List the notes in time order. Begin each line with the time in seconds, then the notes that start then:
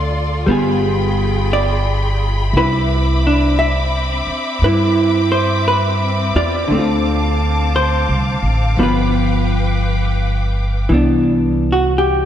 Already playing: D2 D3 C4 F4 A4 D5 F5 C6
0.46 G1 G3 B3 F4 G#4 G5 B5
0.51 G#4
1.53 D5
2.53 C2 C4 E4 E5 D6
2.57 B4
3.27 D4
3.59 E5
4.27 muted upright bass stroke
4.62 G2 E4 B4
5.32 C5
5.68 B4
6.35 E2 F4 D5
6.67 D2 D3 F5 A5
6.72 A3 C4
6.79 F4
7.76 C5
8.09 C2
8.43 A1
8.77 G1 F3 B3 D4 B4 G5
8.83 F4 B4
10.89 C2 E3 B3
10.94 D4
11.72 F#4
11.98 G4